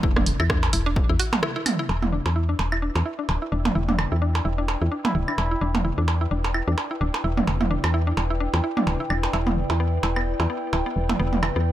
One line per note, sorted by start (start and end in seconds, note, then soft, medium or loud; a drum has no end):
0.03 0.34 E1 loud
0.03 0.09 E4 medium
0.03 kick loud
0.16 0.21 D4 medium
0.16 cross-stick medium
0.16 mid tom medium
0.26 open hi-hat medium
0.40 0.69 E2 medium
0.40 0.44 E4 medium
0.40 claves medium
0.50 0.55 D4 medium
0.50 kick loud
0.50 cross-stick loud
0.63 percussion blips medium
0.73 1.04 E1 medium
0.73 0.79 E4 medium
0.73 open hi-hat medium
0.86 0.90 D4 medium
0.96 kick loud
1.09 1.17 E2 loud
1.09 1.14 E4 medium
1.20 1.25 F#4 loud
1.20 open hi-hat medium
1.33 mid tom medium
1.33 percussion blips medium
1.43 1.48 E4 medium
1.43 cross-stick loud
1.56 1.60 E4 medium
1.66 mid tom medium
1.66 open hi-hat medium
1.66 claves medium
1.79 1.83 E4 medium
1.89 2.20 E1 medium
1.89 11.72 E4 medium
1.89 percussion blips soft
1.99 2.07 E4 medium
1.99 11.72 B4 medium
1.99 mid tom medium
2.13 2.18 D4 medium
2.21 11.72 D5 medium
2.26 2.55 E2 medium
2.26 percussion blips soft
2.36 2.41 E4 medium
2.49 2.53 D4 medium
2.59 2.90 E1 medium
2.59 percussion blips soft
2.71 2.76 E4 medium
2.71 11.72 G5 medium
2.71 claves medium
2.82 2.88 D4 medium
2.96 3.03 E2 loud
2.96 percussion blips soft
3.06 3.11 E4 medium
3.19 3.23 D4 medium
3.29 3.39 D1 loud
3.29 percussion blips soft
3.42 3.46 E4 medium
3.42 shaker soft
3.52 3.70 E1 medium
3.52 3.58 D4 medium
3.65 mid tom medium
3.65 percussion blips soft
3.75 4.06 E1 medium
3.75 3.81 E4 medium
3.89 3.93 D4 medium
3.89 mid tom medium
3.99 claves medium
3.99 percussion blips soft
4.12 4.41 E2 medium
4.12 4.16 E4 medium
4.22 4.27 D4 medium
4.35 percussion blips soft
4.45 4.76 E1 medium
4.45 4.51 E4 medium
4.58 4.62 D4 medium
4.68 percussion blips soft
4.82 4.89 E2 loud
4.82 4.86 E4 medium
4.92 4.97 D4 medium
5.05 5.14 E4 medium
5.05 mid tom medium
5.05 percussion blips soft
5.15 5.25 D1 loud
5.15 5.20 E4 medium
5.28 5.32 D4 medium
5.28 5.75 E4 medium
5.28 claves medium
5.38 5.56 E1 loud
5.38 percussion blips soft
5.51 5.56 E4 medium
5.61 5.92 E1 loud
5.61 5.67 D4 medium
5.75 mid tom medium
5.75 percussion blips soft
5.85 5.90 E4 medium
5.98 6.27 E2 medium
5.98 6.02 D4 medium
6.08 percussion blips soft
6.21 6.25 E4 medium
6.31 6.62 E1 medium
6.31 6.37 D4 medium
6.44 percussion blips soft
6.54 6.60 E4 medium
6.54 claves medium
6.68 6.75 E2 loud
6.68 6.72 D4 medium
6.78 percussion blips soft
6.91 6.95 E4 medium
7.01 7.11 D1 loud
7.01 7.06 D4 medium
7.14 percussion blips soft
7.14 shaker soft
7.24 7.42 E1 loud
7.24 7.30 E4 medium
7.37 7.42 D4 medium
7.37 mid tom medium
7.47 7.78 E1 loud
7.47 percussion blips soft
7.61 7.65 E4 medium
7.61 mid tom medium
7.71 7.76 D4 medium
7.84 8.13 E2 medium
7.84 claves medium
7.84 percussion blips soft
7.94 7.99 E4 medium
8.07 8.11 D4 medium
8.17 8.48 E1 medium
8.17 percussion blips soft
8.30 8.35 E4 medium
8.40 8.46 D4 medium
8.54 8.61 E2 loud
8.54 percussion blips soft
8.64 8.69 E4 medium
8.77 8.81 D4 medium
8.77 mid tom medium
8.87 8.97 D1 loud
8.87 percussion blips soft
9.00 9.04 E4 medium
9.10 9.28 E1 loud
9.10 9.16 D4 medium
9.10 claves medium
9.23 percussion blips soft
9.33 9.64 E1 loud
9.33 9.39 E4 medium
9.33 percussion blips soft
9.47 9.51 B3 medium
9.47 mid tom medium
9.57 shaker soft
9.70 9.99 E2 medium
9.70 9.74 E4 medium
9.70 percussion blips soft
9.80 9.85 B3 medium
10.03 10.34 E1 medium
10.03 10.09 E4 medium
10.03 percussion blips soft
10.16 10.21 B3 medium
10.16 claves medium
10.40 10.47 E2 loud
10.40 10.44 E4 medium
10.40 percussion blips soft
10.50 10.55 B3 medium
10.50 shaker soft
10.73 10.83 D1 loud
10.73 10.79 E4 medium
10.73 percussion blips soft
10.86 10.90 B3 medium
10.86 shaker soft
10.96 11.14 E1 loud
11.09 11.14 E4 medium
11.09 mid tom medium
11.09 percussion blips soft
11.19 11.51 E1 loud
11.19 11.25 B3 medium
11.19 shaker soft
11.33 mid tom medium
11.43 11.48 E4 medium
11.43 claves medium
11.43 percussion blips soft
11.56 11.72 E2 medium
11.56 11.60 B3 medium